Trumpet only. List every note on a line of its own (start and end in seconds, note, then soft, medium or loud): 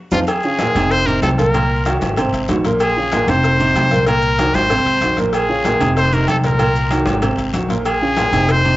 0.12 0.20 F4 loud
0.29 0.93 G#4 loud
0.91 1.08 C5 loud
1.06 1.22 A#4 loud
1.22 1.29 A4 medium
1.38 1.97 A#4 medium
2.81 3.31 G#4 loud
3.29 4.06 C5 loud
4.07 4.56 A#4 loud
4.55 5.18 C5 loud
5.34 5.93 G#4 medium
5.98 6.15 C5 loud
6.14 6.29 A#4 medium
6.30 6.37 A4 medium
6.46 7.04 A#4 medium
7.87 8.53 G#4 loud
8.51 8.77 C5 loud